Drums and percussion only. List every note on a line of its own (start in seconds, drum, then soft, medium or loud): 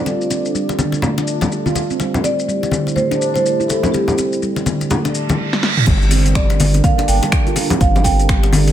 0.06 muted conga soft
0.06 shaker soft
0.21 shaker soft
0.31 muted conga soft
0.31 shaker medium
0.45 shaker soft
0.55 shaker soft
0.69 muted conga soft
0.69 shaker soft
0.79 high conga medium
0.79 shaker medium
0.92 muted conga soft
0.92 shaker soft
1.02 low conga loud
1.02 shaker soft
1.18 muted conga medium
1.18 shaker soft
1.28 shaker medium
1.41 muted conga soft
1.41 high conga loud
1.41 low conga medium
1.41 shaker soft
1.52 shaker soft
1.66 high conga medium
1.66 shaker soft
1.75 muted conga soft
1.75 high conga medium
1.75 shaker medium
1.90 shaker soft
2.00 muted conga medium
2.00 shaker soft
2.14 low conga medium
2.14 shaker soft
2.24 muted conga soft
2.24 shaker medium
2.39 shaker soft
2.49 shaker soft
2.63 muted conga soft
2.63 shaker soft
2.71 high conga medium
2.71 shaker medium
2.87 muted conga soft
2.87 shaker soft
2.96 high conga medium
2.96 shaker soft
3.11 muted conga soft
3.11 shaker soft
3.22 shaker medium
3.36 muted conga soft
3.36 shaker soft
3.46 shaker soft
3.60 shaker soft
3.70 muted conga medium
3.70 shaker medium
3.83 low conga medium
3.83 shaker soft
3.94 muted conga medium
3.94 shaker soft
4.08 low conga medium
4.08 shaker soft
4.18 muted conga soft
4.18 shaker medium
4.33 shaker soft
4.43 shaker soft
4.56 muted conga soft
4.56 shaker soft
4.66 high conga medium
4.66 shaker medium
4.81 muted conga soft
4.81 shaker soft
4.90 low conga loud
4.90 shaker soft
5.05 muted conga medium
5.05 shaker soft
5.15 shaker medium
5.29 muted conga soft
5.29 high conga loud
5.29 low conga medium
5.29 shaker soft
5.53 snare medium
5.63 snare medium
5.77 mid tom medium
5.87 kick loud
5.87 closed hi-hat medium
5.87 crash loud
5.87 muted conga medium
5.87 shaker medium
6.02 shaker soft
6.11 open hi-hat loud
6.11 muted conga soft
6.11 shaker medium
6.26 closed hi-hat soft
6.26 shaker soft
6.35 finger snap loud
6.35 kick loud
6.35 closed hi-hat medium
6.35 shaker medium
6.50 closed hi-hat soft
6.50 muted conga medium
6.50 shaker soft
6.60 open hi-hat medium
6.60 high conga loud
6.60 shaker loud
6.74 closed hi-hat soft
6.74 muted conga soft
6.74 shaker soft
6.84 kick loud
6.84 closed hi-hat medium
6.84 high conga medium
6.84 shaker medium
6.99 closed hi-hat soft
6.99 muted conga medium
6.99 shaker soft
7.08 open hi-hat medium
7.08 shaker medium
7.23 closed hi-hat soft
7.23 muted conga soft
7.23 shaker soft
7.32 finger snap loud
7.32 kick loud
7.32 closed hi-hat medium
7.32 shaker medium
7.47 closed hi-hat soft
7.47 shaker soft
7.56 open hi-hat loud
7.56 muted conga medium
7.56 shaker loud
7.70 closed hi-hat soft
7.70 low conga loud
7.70 shaker soft
7.81 kick loud
7.81 closed hi-hat medium
7.81 muted conga soft
7.81 shaker medium
7.96 low conga medium
7.96 shaker soft
8.04 kick medium
8.04 open hi-hat medium
8.04 muted conga soft
8.04 shaker medium
8.19 closed hi-hat soft
8.19 shaker soft
8.29 finger snap loud
8.29 kick loud
8.29 closed hi-hat medium
8.29 shaker medium
8.43 closed hi-hat soft
8.43 muted conga medium
8.43 shaker soft
8.53 open hi-hat medium
8.53 high conga loud
8.53 shaker medium
8.67 closed hi-hat soft
8.67 muted conga soft
8.67 shaker soft